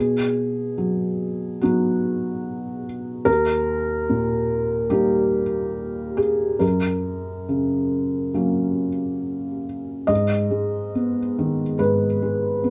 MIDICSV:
0, 0, Header, 1, 2, 480
1, 0, Start_track
1, 0, Key_signature, 5, "minor"
1, 0, Tempo, 829876
1, 1893, Time_signature, 4, 2, 24, 8
1, 3332, Tempo, 867052
1, 5732, Tempo, 847458
1, 7207, End_track
2, 0, Start_track
2, 0, Title_t, "Felt piano"
2, 0, Program_c, 0, 0
2, 0, Note_on_c, 0, 47, 40
2, 0, Note_on_c, 0, 68, 66
2, 87, Control_c, 0, 64, 127
2, 450, Note_on_c, 0, 54, 34
2, 934, Note_on_c, 0, 66, 51
2, 935, Note_off_c, 0, 54, 0
2, 938, Note_off_c, 0, 68, 0
2, 939, Note_on_c, 0, 59, 36
2, 943, Note_on_c, 0, 54, 37
2, 943, Note_on_c, 0, 63, 38
2, 1652, Note_off_c, 0, 66, 0
2, 1869, Note_off_c, 0, 47, 0
2, 1869, Note_off_c, 0, 59, 0
2, 1871, Note_off_c, 0, 54, 0
2, 1871, Note_off_c, 0, 63, 0
2, 1881, Note_on_c, 0, 70, 77
2, 1883, Note_on_c, 0, 39, 49
2, 1903, Control_c, 0, 64, 0
2, 1985, Control_c, 0, 64, 127
2, 2369, Note_on_c, 0, 46, 33
2, 2834, Note_on_c, 0, 67, 62
2, 2835, Note_on_c, 0, 55, 31
2, 2837, Note_off_c, 0, 70, 0
2, 2837, Note_on_c, 0, 58, 32
2, 2840, Note_on_c, 0, 63, 36
2, 3135, Note_off_c, 0, 46, 0
2, 3559, Note_on_c, 0, 68, 62
2, 3564, Note_off_c, 0, 67, 0
2, 3781, Note_off_c, 0, 39, 0
2, 3782, Note_off_c, 0, 55, 0
2, 3782, Note_off_c, 0, 58, 0
2, 3784, Note_off_c, 0, 63, 0
2, 3793, Note_on_c, 0, 70, 50
2, 3797, Note_on_c, 0, 42, 39
2, 3803, Note_off_c, 0, 68, 0
2, 3819, Control_c, 0, 64, 0
2, 3897, Control_c, 0, 64, 127
2, 4288, Note_on_c, 0, 49, 30
2, 4761, Note_on_c, 0, 54, 29
2, 4762, Note_on_c, 0, 58, 25
2, 4767, Note_on_c, 0, 61, 31
2, 5054, Note_off_c, 0, 49, 0
2, 5484, Note_off_c, 0, 70, 0
2, 5705, Note_off_c, 0, 42, 0
2, 5708, Note_off_c, 0, 54, 0
2, 5708, Note_off_c, 0, 58, 0
2, 5711, Note_off_c, 0, 61, 0
2, 5718, Note_on_c, 0, 75, 67
2, 5724, Note_on_c, 0, 44, 44
2, 5744, Control_c, 0, 64, 0
2, 5822, Control_c, 0, 64, 127
2, 5964, Note_on_c, 0, 56, 35
2, 6216, Note_on_c, 0, 59, 33
2, 6353, Note_off_c, 0, 56, 0
2, 6463, Note_on_c, 0, 51, 39
2, 6597, Note_off_c, 0, 59, 0
2, 6665, Note_off_c, 0, 44, 0
2, 6685, Note_off_c, 0, 75, 0
2, 6691, Note_on_c, 0, 71, 62
2, 6697, Note_on_c, 0, 44, 36
2, 6840, Note_off_c, 0, 51, 0
2, 6937, Note_on_c, 0, 56, 33
2, 7172, Note_on_c, 0, 59, 40
2, 7207, Note_off_c, 0, 44, 0
2, 7207, Note_off_c, 0, 56, 0
2, 7207, Note_off_c, 0, 59, 0
2, 7207, Note_off_c, 0, 71, 0
2, 7207, End_track
0, 0, End_of_file